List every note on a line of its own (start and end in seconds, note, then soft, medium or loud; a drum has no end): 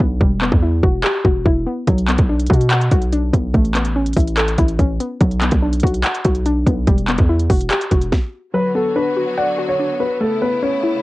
0.00 0.20 B1 loud
0.00 0.21 B3 medium
0.00 0.21 D4 loud
0.00 0.21 F#4 medium
0.00 0.21 F#5 loud
0.21 0.51 E1 loud
0.21 1.25 G3 medium
0.21 kick loud
0.42 1.46 B3 medium
0.42 clap medium
0.52 0.82 E2 loud
0.52 kick loud
0.63 1.44 E4 medium
0.83 1.03 E1 loud
0.83 1.23 F#4 medium
0.83 kick medium
1.04 1.87 G4 loud
1.04 clap loud
1.25 1.45 E1 loud
1.25 1.87 F#4 medium
1.25 kick medium
1.46 1.66 E1 loud
1.46 1.87 E4 medium
1.46 kick medium
1.67 1.87 B3 medium
1.87 2.17 B1 loud
1.87 2.91 F#3 loud
1.87 kick loud
1.87 closed hi-hat medium
1.98 closed hi-hat soft
2.08 3.12 B3 medium
2.08 clap medium
2.08 closed hi-hat medium
2.18 2.49 B1 loud
2.18 kick loud
2.18 closed hi-hat medium
2.29 3.11 D4 medium
2.40 closed hi-hat medium
2.46 2.90 B2 loud
2.46 2.91 F#4 medium
2.46 kick medium
2.46 closed hi-hat medium
2.53 closed hi-hat medium
2.61 closed hi-hat medium
2.70 3.54 F#5 loud
2.70 clap loud
2.70 closed hi-hat medium
2.81 closed hi-hat medium
2.91 3.32 B1 loud
2.91 3.54 F#4 loud
2.91 kick medium
2.91 closed hi-hat medium
3.02 closed hi-hat medium
3.12 3.54 D4 medium
3.12 closed hi-hat medium
3.33 3.53 B1 loud
3.33 3.54 B3 medium
3.33 kick medium
3.33 closed hi-hat medium
3.54 4.14 A1 loud
3.54 4.58 A3 loud
3.54 kick loud
3.54 closed hi-hat medium
3.65 closed hi-hat soft
3.75 4.79 B3 medium
3.75 clap medium
3.75 closed hi-hat medium
3.85 closed hi-hat medium
3.96 4.78 C#4 medium
4.06 closed hi-hat medium
4.13 4.57 A1 loud
4.13 4.57 E4 medium
4.13 kick medium
4.13 closed hi-hat medium
4.13 open hi-hat medium
4.20 closed hi-hat medium
4.27 closed hi-hat medium
4.37 5.21 A4 loud
4.37 clap loud
4.37 closed hi-hat medium
4.48 closed hi-hat medium
4.58 4.78 A1 loud
4.58 5.21 E4 medium
4.58 kick medium
4.58 closed hi-hat medium
4.68 closed hi-hat medium
4.79 4.99 A1 loud
4.79 5.21 C#4 medium
4.79 kick medium
4.79 closed hi-hat medium
5.00 5.21 B3 medium
5.00 closed hi-hat medium
5.21 5.51 B1 loud
5.21 6.25 F#3 medium
5.21 kick loud
5.21 closed hi-hat medium
5.31 closed hi-hat soft
5.41 6.46 B3 medium
5.41 clap medium
5.41 closed hi-hat medium
5.51 5.82 B1 loud
5.51 kick loud
5.51 closed hi-hat medium
5.62 6.45 D4 medium
5.73 closed hi-hat medium
5.80 6.03 B1 loud
5.80 6.24 F#4 medium
5.80 kick medium
5.80 closed hi-hat medium
5.87 closed hi-hat medium
5.94 closed hi-hat medium
6.04 6.87 F#5 loud
6.04 clap loud
6.04 closed hi-hat medium
6.15 closed hi-hat medium
6.25 6.65 B1 loud
6.25 6.87 F#4 medium
6.25 kick medium
6.25 closed hi-hat medium
6.35 closed hi-hat medium
6.46 6.87 D4 loud
6.46 closed hi-hat medium
6.67 6.87 B1 loud
6.67 6.88 B3 medium
6.67 kick medium
6.67 closed hi-hat medium
6.87 7.17 E1 loud
6.87 7.92 G3 loud
6.87 kick loud
6.87 closed hi-hat medium
6.98 closed hi-hat soft
7.08 8.12 B3 medium
7.08 clap medium
7.08 closed hi-hat medium
7.18 7.49 E2 loud
7.18 kick loud
7.18 closed hi-hat medium
7.29 8.33 E4 medium
7.40 closed hi-hat soft
7.50 7.70 E1 loud
7.50 7.90 F#4 medium
7.50 kick medium
7.50 closed hi-hat medium
7.50 open hi-hat medium
7.61 closed hi-hat medium
7.70 8.54 G4 loud
7.70 clap loud
7.70 closed hi-hat medium
7.81 closed hi-hat medium
7.91 8.12 E1 loud
7.91 8.54 F#4 medium
7.91 kick medium
7.91 closed hi-hat medium
8.02 closed hi-hat soft
8.12 kick loud
8.12 snare medium
8.54 10.19 D3 medium
8.54 9.58 F#3 loud
8.54 10.19 F#3 medium
8.54 11.02 B3 medium
8.54 10.19 F#4 medium
8.54 8.70 B4 loud
8.75 9.79 B3 medium
8.75 8.91 A4 medium
8.96 9.78 D4 medium
8.96 9.35 B4 medium
9.17 9.57 F#4 medium
9.37 9.67 D5 medium
9.37 10.21 F#5 loud
9.59 10.21 F#4 loud
9.69 9.98 C#5 medium
9.79 10.21 D4 medium
10.00 10.21 B3 medium
10.00 10.16 B4 medium
10.21 11.02 C#3 medium
10.21 11.02 A3 loud
10.21 11.02 A3 medium
10.21 11.02 E4 medium
10.21 10.37 A4 medium
10.42 11.02 B3 medium
10.42 10.58 B4 medium
10.62 11.02 C#4 loud
10.62 11.02 C#5 medium
10.83 11.02 E4 medium